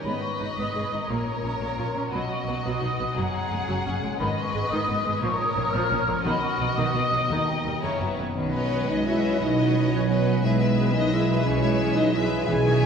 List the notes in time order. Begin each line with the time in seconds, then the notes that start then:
0.04 G#1 G#2 B3 B4 D#5 B5
0.21 D#4 C#6
0.39 G#1 G#2 D#4 B4
0.57 G#1 G#2 B3 D#5 D#6
0.74 G#1 G#2 G#4
0.91 G#1 G#2 D#4
1.08 A#1 A#2 A#3 A#4 C#5 A#5
1.26 C#4
1.43 A#1 A#2 C#4 A#4
1.60 A#1 A#2 A#3 C#5
1.78 A#1 A#2 F4
1.95 A#1 A#2 C#4 A#5
2.12 B1 B2 F#3 F#4 D#5 B5
2.29 B3 C#6
2.48 B1 B2 B3 F#4
2.65 B1 B2 F#3 B4 D#6
2.82 B1 B2 D#4
2.99 B1 B2 B3
3.16 F#1 F#2 F#3 G#4 F#5 A#5
3.34 G#3
3.51 F#1 F#2 G#3 F#4
3.68 F#1 F#2 F#3 G#4
3.85 F#1 F#2 C#4
4.02 F#1 F#2 G#3
4.19 G#1 G#2 D#3 B4 D#5 B5
4.37 G#3 C#6
4.53 G#1 G#2 G#3 B4
4.70 G#1 G#2 D#3 G#4 D#6
4.88 G#1 G#2 B3
5.05 G#1 G#2 G#3
5.22 A#1 A#2 F3 A#4 C#5 C#6
5.39 C#4 D#6
5.56 A#1 A#2 A#3 A#4
5.72 A#1 A#2 F3 C#5 F6
5.90 A#1 A#2 C#4
6.07 A#1 A#2 F3 A#3 A#5
6.24 B1 B2 D#3 F#4 D#5 B5
6.42 B3 C#6
6.59 B1 B2 F#3 D#5
6.77 B1 B2 D#3 B4 D#6
6.94 B1 B2 B3 D#4
7.12 B1 B2 F#3 B3
7.29 D#2 D#3 D#4 A#5
7.47 D#4 G5
7.65 D#2 G3 D#4 D#5
7.82 F#1 F#2 C#3 C#4 E4 C#5 A#5
8.00 F#1 F#2 F#3 B3 B4
8.17 F#1 F#2 E3 E4 C#5
8.35 B1 B2 D#3 B3 C#4 B4
8.53 F#3 F#4 B4 C#5 D#5
8.70 G#3 B4
8.89 B1 C#3 C#4 D#4 C#5 D#5
9.05 F#3 E4 F#4 B4 C#5 D#5 E5
9.24 C#5
9.40 B1 B2 D#3 F#3 C#4 D#4 D#5
9.56 D#4 F#4 B4 C#5 D#5
9.75 C#4
9.92 B1 D#3 F#3 C#4 C#5
10.09 F#3 B3 F#4 B4 C#5 D#5
10.27 C#5
10.43 B1 B2 E3 G#3 B3 G#4 B4 E5
10.60 G#4 B4 E5
10.80 A#4
10.95 B1 F#3 D#4 B4 D#5
11.12 G#3 E4 G#4 B4 E5
11.30 B4
11.45 B1 B2 E3 C#4 C#5
11.62 G#3 E4 G#4 B4 E5
11.80 F#3 D#4
11.96 B1 D#4 B4 D#5
12.13 G#3 E4 G#4 B4 E5
12.32 B4
12.47 B1 B2 E3 C#4 G#4 G#5
12.65 D#3 G#4 C#5 E5
12.83 E3